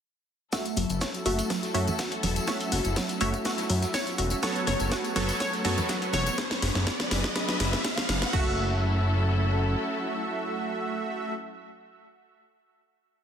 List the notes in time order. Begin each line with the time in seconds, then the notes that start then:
0.52 F#3 A3 C#4 E4 F#4 A4 E5, kick, snare, closed hi-hat, tambourine, riser, shaker
0.65 closed hi-hat, tambourine
0.77 F#1 F#3, open hi-hat, high conga, shaker
0.90 F#1, closed hi-hat, tambourine
1.01 C#5, kick, snare, closed hi-hat, tambourine, shaker
1.14 closed hi-hat, tambourine
1.26 F#1 A3 F#4 E5, open hi-hat, high conga, shaker
1.39 closed hi-hat, tambourine
1.50 F#3, kick, snare, closed hi-hat, tambourine, shaker
1.63 snare, closed hi-hat, tambourine
1.74 F#2 A3 F#4 C#5 E5, snare, open hi-hat, shaker
1.88 closed hi-hat, tambourine, low conga
1.99 F#4, kick, snare, closed hi-hat, tambourine, shaker
2.11 closed hi-hat, tambourine
2.23 E1 F#3, open hi-hat, low conga, shaker
2.36 closed hi-hat, tambourine
2.47 A3 F#4 C#5 E5, kick, snare, closed hi-hat, tambourine, shaker
2.60 closed hi-hat, tambourine
2.72 F#1 F#4, open hi-hat, high conga, shaker
2.85 F#1, closed hi-hat, tambourine
2.96 F#3, kick, snare, closed hi-hat, tambourine, shaker
3.09 closed hi-hat, tambourine
3.21 F#1 A3 F#4 C#5 E5, open hi-hat, high conga, shaker
3.34 kick, closed hi-hat, tambourine
3.45 F#4, kick, snare, closed hi-hat, tambourine, shaker
3.58 snare, closed hi-hat, tambourine
3.70 F#2 F#3, open hi-hat, shaker
3.82 snare, closed hi-hat, tambourine
3.94 C#5, kick, snare, closed hi-hat, tambourine, shaker
4.07 snare, closed hi-hat, tambourine
4.18 E1 F#4, open hi-hat, shaker
4.30 closed hi-hat, tambourine
4.43 F#3 A3 B3 A4 C#5, kick, snare, closed hi-hat, tambourine, shaker
4.56 closed hi-hat, tambourine
4.67 F#1 C#5, snare, open hi-hat, high conga, shaker
4.80 F#1, closed hi-hat, tambourine
4.92 F#4, kick, snare, closed hi-hat, tambourine, shaker
5.04 closed hi-hat, tambourine
5.16 F#1 F#3 B3 A4 C#5, snare, open hi-hat, high conga, shaker
5.29 closed hi-hat, tambourine
5.40 C#5, kick, snare, closed hi-hat, tambourine, shaker
5.53 snare, closed hi-hat, tambourine
5.65 F#2 F#3 B3 F#4 A4 C#5, snare, open hi-hat, shaker
5.78 closed hi-hat, tambourine, low conga
5.89 F#3, kick, snare, closed hi-hat, tambourine, shaker
6.02 closed hi-hat, tambourine
6.13 E1 C#5, snare, open hi-hat, low conga, shaker
6.26 closed hi-hat, tambourine
6.38 F#3 D4 G#4 B4, kick, snare, closed hi-hat
6.51 snare, closed hi-hat
6.62 F#1, snare, open hi-hat
6.75 F#1, snare, closed hi-hat
6.87 kick, snare, closed hi-hat
7.00 snare, closed hi-hat
7.11 F#1, snare, open hi-hat
7.24 kick, snare, closed hi-hat
7.36 kick, snare, closed hi-hat
7.49 snare, closed hi-hat
7.60 F#1, snare, open hi-hat
7.73 snare, closed hi-hat
7.84 kick, snare, closed hi-hat
7.98 snare, closed hi-hat
8.09 F#1, snare, open hi-hat
8.22 snare, closed hi-hat
8.33 F#1 F#3 A3 C#4 E4 F#4 A4 E5, kick, crash